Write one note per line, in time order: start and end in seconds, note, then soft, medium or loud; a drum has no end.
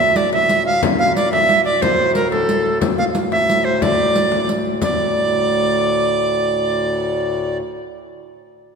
0.00 0.81 D2 medium
0.00 0.81 A2 medium
0.00 0.18 E5 loud
0.16 0.33 D5 medium
0.16 riq medium
0.16 frame drum soft
0.33 0.64 E5 loud
0.33 riq soft
0.33 frame drum medium
0.49 riq medium
0.66 0.81 F5 medium
0.82 4.81 D2 medium
0.82 4.81 A2 medium
0.82 riq medium
0.82 frame drum loud
0.99 1.14 F5 medium
1.16 1.31 D5 medium
1.16 riq medium
1.16 frame drum soft
1.32 1.63 E5 loud
1.32 frame drum medium
1.49 riq medium
1.65 1.83 D5 medium
1.65 frame drum soft
1.82 2.14 C5 medium
1.82 riq medium
1.82 frame drum medium
2.15 2.30 A#4 medium
2.15 riq medium
2.15 frame drum soft
2.31 2.78 A4 medium
2.31 frame drum medium
2.49 riq medium
2.66 frame drum soft
2.81 riq medium
2.81 frame drum medium
2.98 3.04 F5 medium
3.15 riq medium
3.15 frame drum soft
3.32 3.66 E5 loud
3.32 frame drum medium
3.49 riq medium
3.65 3.83 C5 medium
3.65 frame drum soft
3.82 4.49 D5 medium
3.82 riq medium
3.82 frame drum medium
3.99 frame drum soft
4.16 riq medium
4.16 frame drum soft
4.32 frame drum medium
4.49 riq medium
4.49 frame drum soft
4.65 frame drum soft
4.82 7.61 D2 medium
4.82 7.61 A2 medium
4.82 7.58 D5 loud
4.82 riq medium
4.82 frame drum medium